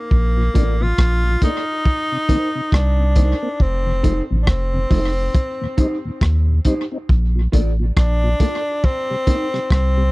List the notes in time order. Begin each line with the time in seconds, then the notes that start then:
Already playing: A#3
0.11 A#1, kick
0.37 A#2 F3
0.54 A1 A3 A#3 D4 F4 A4 D5, kick, closed hi-hat
0.80 A#2 F3 F4
0.98 A#1, kick, cross-stick
1.24 A#2 F3
1.41 A3 A#3 D4 D#4 F4 A4 D5, kick, closed hi-hat
1.85 kick
2.12 C3
2.28 D#3 A#3 C4 D#4 A#4 C5, kick, closed hi-hat
2.55 C3
2.72 C2 D4, kick, cross-stick
2.99 C3
3.15 D#3 A#3 C4 D#4 A#4 C5, kick, closed hi-hat
3.42 A#3 C4
3.60 F1 C4, kick
3.86 F2 C3
4.03 F3 A3 D#4 A4 C5, kick, closed hi-hat
4.31 A1 F2 C3
4.43 D4
4.47 F1 C4, kick, cross-stick
4.74 F2 C3
4.90 F1 F3 A3 D#4 A4 C5, kick, open hi-hat
5.34 kick, hi-hat pedal
5.61 D#2 A#2
5.77 G3 C4 D#4 G4 C5, kick, closed hi-hat
6.05 D#2 A#2
6.21 D#2, kick, cross-stick
6.48 D#2 A#2
6.65 G3 C4 D#4 G4 C5, kick, closed hi-hat
6.92 C4 D#4, muted clean electric guitar stroke
7.09 A#1, kick
7.35 A#2 F3
7.52 A1 A3 A#3 D4 F4 A4 D5, kick, closed hi-hat
7.79 A#2 F3
7.97 A#1 D4, kick, cross-stick
8.23 A#2 F3
8.40 A3 A#3 D4 F4 A4 D5, kick, closed hi-hat
8.84 C4, kick
9.10 C3 G3
9.27 A#3 C4 D#4 A#4 C5, kick, closed hi-hat
9.54 C3 G3, cross-stick
9.70 C2 C4, kick, cross-stick
9.97 C3 G3